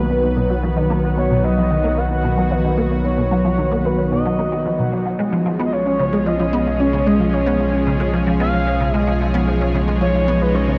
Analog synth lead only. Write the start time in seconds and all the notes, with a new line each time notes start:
Already playing: B4
1.17 C#5
1.44 D#5
1.98 F#5
2.51 B4
3.05 C#5
3.85 B4
4.12 D#5
5.65 D#5
5.72 C#5
6.26 D#5
6.80 C#5
7.06 D#5
7.33 C#5
8.40 F5
8.96 D#5
10.01 C#5
10.41 B4
10.55 C#5